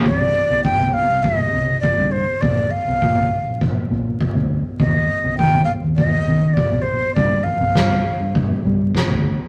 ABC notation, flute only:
X:1
M:4/4
L:1/8
Q:1/4=101
K:Cm
V:1 name="Flute"
d2 g f e2 d c | d f3 z4 | e2 g f e2 d c | d f3 z4 |]